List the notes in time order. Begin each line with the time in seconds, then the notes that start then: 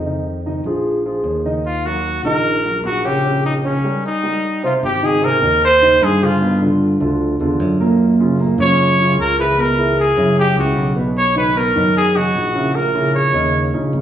Already playing: F2
0.06 D#3 D#4 D#5
0.46 D#3 D#4 D#5
0.64 A#1 F3 F4 G#4
1.06 F3 F4 G#4
1.24 D#2
1.45 D#3 D#4 D#5
1.66 F4
1.86 F#3 F#4 A#4
2.23 A#1 D#3 D#4 A#4 D#5
2.65 F#3 F#4 A#4
2.83 A#1 F#4
3.05 C#3 C#4 G4 C#5
3.24 C#3 C#4 C#5
3.46 D#4
3.64 C#3 C#4 C#5
3.84 G3 G4 A#4
4.06 D#4
4.23 G3 G4 A#4
4.63 C3 C4 F4 C5
4.83 G#1 G4
5.02 D#3 D#4 G4 G#4
5.22 C3 C4 A#4 C5
5.42 D#2 D#3 D#4 G4
5.65 C5
5.82 D#3 D#4 G4
6.01 G2 G#4
6.21 D3 D4 F4
6.41 B2 B3 B4
6.61 D3 D4 F4
7.00 D2 D3 D4 F4
7.40 E2 D3 D4 F4
7.60 F#2
7.80 A#2 A#3 A#4
8.20 C#3 C#4 F4
8.40 A#2 A#3 A#4
8.58 F#2 C#3 C#4 F4 C#5
8.99 C#3 C#4 F4
9.18 C#2 A#4
9.38 E3 E4 G#4 B4
9.58 B2 B3 A#4 B4
9.78 E3 E4 G#4
10.00 G#4
10.16 F#2 C#3 C#4 E4
10.39 G4
10.56 C#2 C#3 C#4 E4 F#4
10.76 B1
10.96 B2 B3 B4
11.18 C#5
11.36 D#3 D#4 F#4 B4
11.56 B2 B3 A#4 B4
11.76 F#2 D#3 D#4 F#4
11.97 G#4
12.15 D#3 D#4 F#4
12.35 A#1
12.55 C#3 C#4 E4
12.75 A#2 A#3 A#4
12.95 C#3 C#4 E4
13.15 C#5
13.33 D#2 C#3 C#4 D#4
13.74 A#1 C#3 C#4 D#4
13.93 G#1